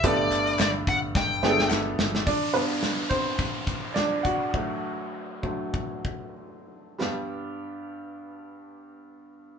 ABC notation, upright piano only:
X:1
M:4/4
L:1/8
Q:"Swing 16ths" 1/4=102
K:G
V:1 name="Upright piano"
[A,B,DGA]4 z [A,B,DG_A=A]3 | [Dd] [B,B]2 [Cc]2 z [Dd] [Ff]- | [Ff]6 z2 | [G,B,DG]8 |]
V:2 name="Upright piano" clef=bass
G,,3 z4 z | z [G,,D,D]6- [G,,D,D] | [D,F,A,]3 [D,F,A,] z4 | G,,8 |]